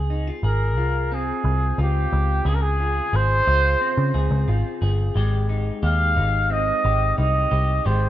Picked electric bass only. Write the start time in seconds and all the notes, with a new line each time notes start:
Already playing: C#2
0.43 G#1
0.77 C2
1.44 C2
1.78 C#2
2.13 C#2
2.45 C#2
3.13 G#1
3.47 C#2
3.98 C#3
4.14 C#2
4.31 C#2
4.48 G#1
4.82 G1
5.15 G#1
5.83 D#2
6.17 G#1
6.85 G#1
7.18 C2
7.52 C2
7.86 G#1